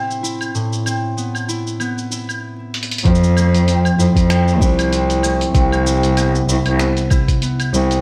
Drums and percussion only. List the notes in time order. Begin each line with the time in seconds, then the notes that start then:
0.11 cabasa
0.24 cabasa
0.41 cabasa, claves
0.55 cabasa
0.73 cabasa
0.86 cabasa, claves
1.18 cabasa
1.35 cabasa, claves
1.49 cabasa
1.67 cabasa
1.80 cabasa, claves
1.98 cabasa
2.12 cabasa
2.29 cabasa, claves
2.74 closed hi-hat
2.83 closed hi-hat
2.91 closed hi-hat
2.98 closed hi-hat
3.05 kick, closed hi-hat
3.15 cabasa
3.23 cabasa
3.37 cabasa, claves
3.54 closed hi-hat, cabasa
3.68 closed hi-hat, cabasa
3.85 cabasa, claves
4.00 cabasa
4.16 kick, closed hi-hat, cabasa
4.30 finger snap, closed hi-hat, cabasa, claves
4.48 cabasa
4.61 kick, cabasa
4.79 closed hi-hat, cabasa, claves
4.93 closed hi-hat, cabasa
5.10 closed hi-hat, cabasa
5.23 cabasa, claves
5.41 closed hi-hat, cabasa
5.55 kick, closed hi-hat, cabasa
5.72 cabasa, claves
5.86 cabasa
6.03 closed hi-hat, cabasa
6.17 closed hi-hat, cabasa, claves
6.35 cabasa
6.49 cabasa
6.66 closed hi-hat, claves
6.79 finger snap, closed hi-hat, cabasa
6.97 closed hi-hat, cabasa
7.10 kick, cabasa, claves
7.28 kick, closed hi-hat, cabasa
7.42 closed hi-hat, cabasa
7.60 closed hi-hat, cabasa, claves
7.74 cabasa
7.91 closed hi-hat, cabasa